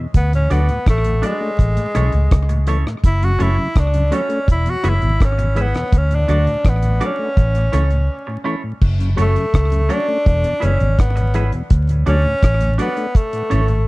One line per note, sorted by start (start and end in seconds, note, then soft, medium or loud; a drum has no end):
0.14 0.49 D2 medium
0.14 0.32 B3 loud
0.14 kick loud
0.14 closed hi-hat loud
0.33 0.43 D2 medium
0.33 0.43 A2 medium
0.33 0.53 C#4 medium
0.33 closed hi-hat soft
0.50 0.68 D2 loud
0.50 0.61 F#3 medium
0.50 0.61 A3 medium
0.50 0.88 B3 medium
0.50 0.66 D4 medium
0.50 0.61 D4 medium
0.50 0.67 F#4 medium
0.50 0.67 A4 medium
0.50 0.67 D5 medium
0.50 closed hi-hat medium
0.69 0.79 D2 medium
0.69 0.79 A2 medium
0.69 closed hi-hat soft
0.86 1.21 A1 medium
0.86 1.27 A3 loud
0.86 kick medium
0.86 cross-stick loud
0.86 closed hi-hat medium
1.04 1.15 D2 medium
1.04 1.15 A2 medium
1.04 closed hi-hat medium
1.22 1.33 F#3 medium
1.22 2.69 G#3 medium
1.22 1.33 A3 medium
1.22 1.38 D4 medium
1.22 1.33 D4 medium
1.22 1.39 F#4 medium
1.22 1.39 A4 medium
1.22 1.39 D5 medium
1.22 closed hi-hat medium
1.41 1.51 A3 medium
1.41 1.51 D4 medium
1.59 1.76 A1 loud
1.59 kick loud
1.59 closed hi-hat medium
1.77 1.87 A2 medium
1.77 closed hi-hat medium
1.94 2.13 B1 medium
1.94 2.05 E3 medium
1.94 2.05 A3 medium
1.94 2.05 C#4 medium
1.94 2.11 C#4 medium
1.94 2.11 E4 medium
1.94 2.11 A4 medium
1.94 2.12 C#5 medium
1.94 cross-stick medium
1.94 closed hi-hat medium
2.12 2.30 C#2 medium
2.12 2.23 A2 medium
2.12 closed hi-hat soft
2.31 2.83 C#2 medium
2.31 kick loud
2.31 cross-stick loud
2.31 closed hi-hat loud
2.49 2.59 A2 medium
2.49 muted clean electric guitar stroke soft
2.49 closed hi-hat medium
2.67 2.77 E3 medium
2.67 2.77 A3 medium
2.67 2.77 C#4 medium
2.67 2.83 C#4 medium
2.67 2.84 E4 medium
2.67 2.84 A4 medium
2.67 2.84 C#5 medium
2.67 closed hi-hat medium
2.85 2.96 A2 medium
2.85 cross-stick medium
3.04 3.38 F#1 loud
3.04 3.26 E4 loud
3.04 kick loud
3.04 closed hi-hat loud
3.22 3.32 F#2 medium
3.22 3.32 C#3 medium
3.22 3.44 F#4 medium
3.22 closed hi-hat soft
3.39 3.57 F#1 medium
3.39 3.50 F#3 medium
3.39 3.50 A3 medium
3.39 3.55 C#4 medium
3.39 3.50 C#4 medium
3.39 3.81 E4 loud
3.39 3.56 F#4 medium
3.39 3.56 A4 medium
3.39 3.56 C#5 loud
3.39 closed hi-hat medium
3.58 3.68 F#2 medium
3.58 3.68 C#3 medium
3.76 4.10 C#2 medium
3.76 4.16 D4 medium
3.76 kick loud
3.76 cross-stick loud
3.76 closed hi-hat medium
3.94 4.04 F#2 medium
3.94 4.04 C#3 medium
3.94 closed hi-hat medium
4.11 4.21 F#3 medium
4.11 4.21 A3 medium
4.11 4.22 C#4 medium
4.11 4.28 C#4 medium
4.11 4.28 F#4 medium
4.11 4.28 A4 medium
4.11 4.29 C#5 medium
4.11 closed hi-hat medium
4.15 4.49 C#4 loud
4.29 4.39 A3 medium
4.29 4.40 C#4 medium
4.29 closed hi-hat soft
4.48 4.65 E1 medium
4.48 4.72 E4 loud
4.48 kick loud
4.48 closed hi-hat medium
4.66 4.76 E2 medium
4.66 4.76 B2 medium
4.66 closed hi-hat medium
4.70 4.91 F#4 loud
4.83 5.01 F#1 medium
4.83 4.94 E3 medium
4.83 4.94 G#3 medium
4.83 4.94 B3 medium
4.83 5.00 E4 medium
4.83 5.00 G#4 medium
4.83 5.00 B4 medium
4.83 5.00 E5 medium
4.83 cross-stick medium
4.83 closed hi-hat medium
4.89 5.27 E4 medium
5.02 5.19 G#1 medium
5.02 5.12 E2 medium
5.02 5.12 B2 medium
5.02 closed hi-hat soft
5.20 5.72 G#1 medium
5.20 kick loud
5.20 cross-stick loud
5.20 closed hi-hat loud
5.25 5.63 C#4 medium
5.38 5.48 E2 medium
5.38 5.48 B2 medium
5.38 muted clean electric guitar stroke soft
5.38 closed hi-hat medium
5.55 5.66 E3 medium
5.55 5.66 G#3 medium
5.55 5.66 B3 medium
5.55 5.72 E4 medium
5.55 5.73 G#4 medium
5.55 5.73 B4 medium
5.55 5.73 E5 medium
5.55 closed hi-hat medium
5.61 5.99 B3 medium
5.74 5.84 E2 medium
5.74 5.84 B2 medium
5.74 cross-stick medium
5.74 closed hi-hat soft
5.92 6.27 D2 medium
5.92 kick loud
5.92 closed hi-hat loud
5.98 6.17 C#4 medium
6.10 6.20 D2 medium
6.10 6.20 A2 medium
6.10 closed hi-hat soft
6.15 6.70 D4 medium
6.28 6.46 D2 medium
6.28 6.39 F#3 medium
6.28 6.39 A3 medium
6.28 6.44 D4 medium
6.28 6.39 D4 medium
6.28 6.45 F#4 medium
6.28 6.45 A4 medium
6.28 6.45 D5 medium
6.28 closed hi-hat medium
6.47 6.57 D2 medium
6.47 6.57 A2 medium
6.47 closed hi-hat soft
6.65 6.99 A1 medium
6.65 kick medium
6.65 cross-stick medium
6.65 closed hi-hat medium
6.69 7.07 B3 medium
6.83 6.93 D2 medium
6.83 6.93 A2 medium
6.83 closed hi-hat medium
7.00 7.11 F#3 medium
7.00 7.11 A3 medium
7.00 7.17 D4 medium
7.00 7.11 D4 medium
7.00 7.17 F#4 medium
7.00 7.17 A4 medium
7.00 7.17 D5 medium
7.00 closed hi-hat medium
7.06 8.48 C#4 loud
7.19 7.29 A3 medium
7.19 7.29 D4 medium
7.37 7.72 A1 medium
7.37 kick loud
7.37 closed hi-hat medium
7.55 7.66 A2 medium
7.55 closed hi-hat medium
7.72 8.07 C#2 medium
7.72 7.83 E3 medium
7.72 7.84 A3 medium
7.72 7.89 C#4 medium
7.72 7.84 C#4 medium
7.72 7.89 E4 medium
7.72 7.89 A4 medium
7.72 7.90 C#5 medium
7.72 cross-stick medium
7.72 closed hi-hat medium
7.90 8.02 A2 medium
7.90 closed hi-hat soft
8.27 8.38 A2 medium
8.27 muted clean electric guitar stroke soft
8.44 8.55 E3 medium
8.44 8.56 A3 medium
8.44 8.61 C#4 medium
8.44 8.56 C#4 medium
8.44 8.61 E4 medium
8.44 8.61 A4 medium
8.44 8.61 C#5 medium
8.63 8.73 A2 medium
8.82 9.16 F#1 loud
8.82 kick loud
8.82 crash loud
8.99 9.10 F#2 medium
8.99 9.10 C#3 medium
8.99 closed hi-hat soft
9.16 9.35 F#1 medium
9.16 9.27 F#3 medium
9.16 9.27 A3 medium
9.16 9.27 C#4 medium
9.16 9.33 C#4 medium
9.16 9.33 F#4 medium
9.16 9.34 A4 medium
9.16 9.34 C#5 medium
9.16 closed hi-hat medium
9.21 9.94 A3 medium
9.35 9.46 F#2 medium
9.35 9.46 C#3 medium
9.35 closed hi-hat soft
9.54 9.88 C#2 medium
9.54 kick medium
9.54 cross-stick loud
9.54 closed hi-hat medium
9.71 9.82 F#2 medium
9.71 9.81 C#3 medium
9.71 closed hi-hat medium
9.89 10.00 F#3 medium
9.89 10.00 A3 medium
9.89 10.05 C#4 medium
9.89 10.00 C#4 medium
9.89 10.66 D4 loud
9.89 10.06 F#4 medium
9.89 10.06 A4 medium
9.89 10.06 C#5 medium
9.89 closed hi-hat medium
10.08 10.18 A3 medium
10.08 10.18 C#4 medium
10.26 10.44 E1 loud
10.26 kick loud
10.26 closed hi-hat medium
10.44 10.54 E2 medium
10.44 10.54 B2 medium
10.44 closed hi-hat medium
10.60 10.80 F#1 medium
10.60 10.72 E3 medium
10.60 10.72 G#3 medium
10.60 10.72 B3 medium
10.60 10.77 E4 medium
10.60 10.77 G#4 medium
10.60 10.78 B4 medium
10.60 10.78 E5 medium
10.60 closed hi-hat medium
10.64 11.01 C#4 medium
10.80 10.98 G#1 medium
10.80 10.90 E2 medium
10.80 10.90 B2 medium
10.80 closed hi-hat soft
10.99 11.50 G#1 loud
10.99 11.53 B3 medium
10.99 kick loud
10.99 cross-stick loud
10.99 closed hi-hat loud
11.16 11.26 E2 medium
11.16 11.27 B2 medium
11.16 muted clean electric guitar stroke medium
11.16 closed hi-hat medium
11.34 11.44 E3 medium
11.34 11.44 G#3 medium
11.34 11.45 B3 medium
11.34 11.50 E4 medium
11.34 11.50 G#4 medium
11.34 11.51 B4 medium
11.34 11.51 E5 medium
11.34 closed hi-hat medium
11.52 11.62 E2 medium
11.52 11.62 B2 medium
11.52 closed hi-hat soft
11.70 12.05 D2 medium
11.70 kick loud
11.70 closed hi-hat loud
11.89 11.99 D2 medium
11.89 11.98 A2 medium
11.89 closed hi-hat soft
12.06 12.24 D2 medium
12.06 12.17 F#3 medium
12.06 12.17 A3 medium
12.06 12.76 C#4 loud
12.06 12.22 D4 medium
12.06 12.17 D4 medium
12.06 12.22 F#4 medium
12.06 12.23 A4 medium
12.06 12.23 D5 medium
12.06 closed hi-hat medium
12.25 12.35 D2 medium
12.25 12.35 A2 medium
12.43 12.77 A1 loud
12.43 kick loud
12.43 cross-stick loud
12.43 closed hi-hat medium
12.61 12.71 D2 medium
12.61 12.71 A2 medium
12.61 closed hi-hat medium
12.78 12.89 F#3 medium
12.78 12.89 A3 medium
12.78 13.18 B3 loud
12.78 12.94 D4 medium
12.78 12.89 D4 medium
12.78 12.95 F#4 medium
12.78 12.95 A4 medium
12.78 12.95 D5 medium
12.78 closed hi-hat medium
12.97 13.07 A3 medium
12.97 13.07 D4 medium
12.97 closed hi-hat soft
13.15 13.88 A3 medium
13.15 kick loud
13.15 closed hi-hat medium
13.33 13.43 A2 medium
13.33 closed hi-hat medium
13.50 13.85 G#1 medium
13.50 13.61 E3 medium
13.50 13.61 A3 medium
13.50 13.66 C#4 medium
13.50 13.61 C#4 medium
13.50 13.67 E4 medium
13.50 13.67 A4 medium
13.50 13.67 C#5 medium
13.50 closed hi-hat medium
13.68 13.79 A2 medium
13.68 closed hi-hat soft